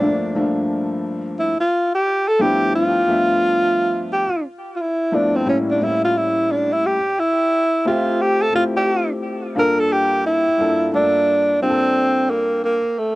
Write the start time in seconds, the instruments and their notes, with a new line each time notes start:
Already playing: tenor saxophone D4
0.01 upright piano G2 F3 A3 A#3 D4
0.35 upright piano G2 F3 A3 A#3 D4
1.39 tenor saxophone E4
1.60 tenor saxophone F4
1.95 tenor saxophone G4
2.28 tenor saxophone A4
2.39 upright piano G2 F3 A3 B3 D4 E4, tenor saxophone G4
2.75 tenor saxophone F4
3.07 upright piano G2 F3 A3 B3 D4 E5
4.12 tenor saxophone G4
4.76 tenor saxophone F4
4.81 tenor saxophone E4
5.11 upright piano G2 F3 A3 B3 D4 E4, tenor saxophone D4
5.36 tenor saxophone C4
5.46 upright piano A2 G3 A#3 C#4 E4, tenor saxophone C#4
5.70 tenor saxophone D4
5.80 upright piano A2 G3 A#3 C#4 E4, tenor saxophone E4
6.05 tenor saxophone F4
6.17 tenor saxophone E4
6.52 tenor saxophone D4
6.73 tenor saxophone E4
6.86 tenor saxophone G4
7.19 tenor saxophone E4
7.85 upright piano A3 C4 F4 G4 E5, tenor saxophone F4
8.21 tenor saxophone G4
8.42 tenor saxophone A4
8.53 upright piano A3 C4 E4 F4 G4, tenor saxophone F4
8.77 tenor saxophone G4
9.55 upright piano G2 A#3 D4 F4 A4
9.59 tenor saxophone A#4
9.79 tenor saxophone A4
9.93 tenor saxophone G4
10.26 tenor saxophone E4
10.58 upright piano G2 A#3 D4 F4 A4
10.91 upright piano G2 A3 D4 F4 A4, tenor saxophone D4
10.98 upright piano A#3
11.60 upright piano G2 A#3 D4 F4 G4, tenor saxophone C4
11.70 upright piano A4
12.30 tenor saxophone A#3
12.64 tenor saxophone A#3
12.99 tenor saxophone A3